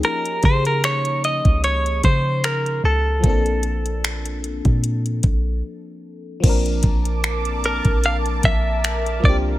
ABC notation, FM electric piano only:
X:1
M:4/4
L:1/8
Q:"Swing 16ths" 1/4=75
K:Bblyd
V:1 name="FM electric piano"
[F,B,_D_E_A]6- [F,B,DEA] z | [F,B,CDA]8 | [F,B,CDB]6- [F,B,CDB] [F,B,CDG] |]